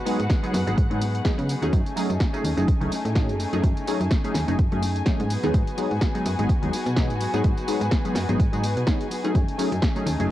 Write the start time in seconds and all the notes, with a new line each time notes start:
Already playing: F#4 B4 F#5
0.05 F#3 G#3 B3 D#4 G#4, open hi-hat, tambourine
0.18 G#2 B3 D#4 G#4, closed hi-hat, tambourine
0.29 F#3 B3 D#4 G#4, kick, snare, closed hi-hat, tambourine
0.43 F#3 G#3 B3 D#4 G#4, closed hi-hat, tambourine
0.53 F#2 F#3 B3 D#4 G#4, snare, open hi-hat, tambourine
0.66 G#1 F#3 G#3 B3 D#4 G#4, closed hi-hat, tambourine
0.77 G#2, kick, closed hi-hat, tambourine
0.90 G#2 F#3 G#3 B3 D#4 G#4, closed hi-hat
1.00 F#3 B3 D#4 G#4, open hi-hat, tambourine
1.15 closed hi-hat, tambourine
1.25 F#3 G#3 B3 D#4 G#4, kick, snare, closed hi-hat, tambourine
1.38 C#3 B3 D#4 G#4, closed hi-hat, tambourine
1.48 F#3 B3 D#4 G#4, open hi-hat, tambourine
1.62 D#2 F#3 A3 C#4 D#4 G#4, closed hi-hat, tambourine
1.72 F#2 A3 C#4 D#4 G#4 G#5, kick, closed hi-hat, tambourine
1.86 closed hi-hat, tambourine
1.96 F#3 A3 C#4 D#4 G#4, open hi-hat, tambourine
2.09 F#2 C#4 D#4 G#4, closed hi-hat, tambourine
2.20 A3 C#4 D#4, kick, snare, closed hi-hat, tambourine
2.33 F#3 A3 C#4 D#4 G#4, closed hi-hat, tambourine
2.44 D#2 A3 C#4 D#4 G#4, open hi-hat, tambourine
2.57 F#1 F#3 A3 C#4 D#4 G#4, closed hi-hat, tambourine
2.68 kick, closed hi-hat, tambourine
2.81 C#2 F#3 A3 C#4 D#4 G#4, closed hi-hat
2.91 A3 C#4 D#4 G#4, open hi-hat, tambourine
3.05 A2, closed hi-hat, tambourine
3.15 F#3 A3 C#4 D#4 G#4, kick, snare, closed hi-hat, tambourine
3.28 F#2 C#4 D#4 G#4, closed hi-hat, tambourine
3.39 A3 C#4 D#4 G#4, open hi-hat, tambourine
3.53 F#2 F#3 A3 C#4 D#4 G#4, closed hi-hat, tambourine
3.63 F#2 A3 C#4 D#4 G#4, kick, closed hi-hat, tambourine
3.77 closed hi-hat, tambourine
3.86 F#3 A3 C#4 D#4 G#4, open hi-hat, tambourine
4.00 F#2 C#4 D#4 G#4, closed hi-hat, tambourine
4.11 A3 C#4 D#4 G#4, kick, snare, closed hi-hat, tambourine
4.24 F#3 A3 C#4 D#4 G#4, closed hi-hat, tambourine
4.34 D#2 A3 C#4 D#4 G#4, snare, open hi-hat, tambourine
4.48 F#1 F#3 A3 C#4 D#4 G#4, closed hi-hat, tambourine
4.59 F#2, kick, closed hi-hat, tambourine
4.72 F#2 F#3 A3 C#4 D#4 G#4, closed hi-hat
4.82 A3 C#4 D#4 G#4, open hi-hat, tambourine
4.96 closed hi-hat, tambourine
5.06 F#3 A3 C#4 D#4 G#4, kick, snare, closed hi-hat, tambourine
5.19 G#2 C#4 D#4 G#4, closed hi-hat, tambourine
5.29 F#3 B3 D#4 F#4 G#4 B4, open hi-hat, tambourine
5.43 D#2 F#3 G#3 B3 D#4 G#4, closed hi-hat, tambourine
5.54 G#2 F#3 B3 D#4 G#4, kick, closed hi-hat, tambourine
5.67 closed hi-hat, tambourine
5.77 F#3 G#3 B3 D#4 G#4, open hi-hat, tambourine
5.90 G#2 B3 D#4 G#4, closed hi-hat, tambourine
6.01 F#3 B3 D#4 G#4, kick, snare, closed hi-hat, tambourine
6.14 F#3 G#3 B3 D#4 G#4, closed hi-hat, tambourine
6.25 F#2 F#3 B3 D#4 G#4, open hi-hat, tambourine
6.38 G#1 F#3 G#3 B3 D#4 G#4, closed hi-hat, tambourine
6.49 D#2, kick, closed hi-hat, tambourine
6.62 D#2 F#3 G#3 B3 D#4 G#4, closed hi-hat
6.72 F#3 B3 D#4 G#4, open hi-hat, tambourine
6.86 B2, closed hi-hat, tambourine
6.96 F#3 G#3 B3 D#4 G#4, kick, snare, closed hi-hat, tambourine
7.09 G#2 B3 D#4 G#4, closed hi-hat, tambourine
7.20 F#3 B3 D#4 G#4, open hi-hat, tambourine
7.33 G#2 F#3 G#3 B3 D#4 G#4, closed hi-hat, tambourine
7.44 G#2 F#3 B3 D#4 G#4, kick, closed hi-hat, tambourine
7.58 closed hi-hat, tambourine
7.68 F#3 G#3 B3 D#4 G#4, open hi-hat, tambourine
7.81 G#2 B3 D#4 G#4, closed hi-hat, tambourine
7.91 F#3 B3 D#4 G#4, kick, snare, closed hi-hat, tambourine
8.05 F#3 G#3 B3 D#4 G#4, closed hi-hat, tambourine
8.15 F#2 F#3 B3 D#4 G#4, snare, open hi-hat, tambourine
8.28 G#1 F#3 G#3 B3 D#4 G#4, closed hi-hat, tambourine
8.40 G#2, kick, closed hi-hat, tambourine
8.52 G#2 F#3 G#3 B3 D#4 G#4, closed hi-hat, tambourine
8.63 F#3 B3 D#4 G#4, open hi-hat, tambourine
8.77 B2, closed hi-hat, tambourine
8.87 F#3 G#3 B3 D#4 G#4, kick, snare, closed hi-hat, tambourine
8.99 B3 D#4 G#4, closed hi-hat, tambourine
9.10 F#3 B3 D#4 G#4, open hi-hat, tambourine
9.24 F#3 A3 C#4 D#4 G#4, closed hi-hat, tambourine
9.34 F#2 A3 C#4 D#4 G#4, kick, closed hi-hat, tambourine
9.48 closed hi-hat, tambourine
9.58 F#3 A3 C#4 D#4 G#4, open hi-hat, tambourine
9.71 F#2 C#4 D#4 G#4, closed hi-hat, tambourine
9.82 A3 C#4 D#4 G#4, kick, snare, closed hi-hat, tambourine
9.95 F#3 A3 C#4 D#4 G#4, closed hi-hat, tambourine
10.05 D#2 A3 C#4 D#4 G#4, open hi-hat, tambourine
10.18 F#1 F#3 A3 C#4 D#4 G#4, closed hi-hat, tambourine